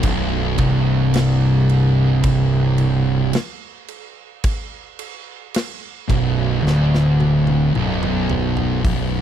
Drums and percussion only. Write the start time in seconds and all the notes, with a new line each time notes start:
0.03 kick, crash
0.58 kick, crash
1.14 snare, crash
1.69 crash
2.23 kick, crash
2.78 crash
3.33 snare, crash
3.88 crash
4.44 kick, crash
4.99 crash
5.54 snare, crash
6.10 kick, crash
6.67 snare
6.95 snare
7.20 high tom
7.47 high tom
7.75 mid tom
8.03 mid tom
8.30 floor tom
8.57 floor tom
8.85 kick, open hi-hat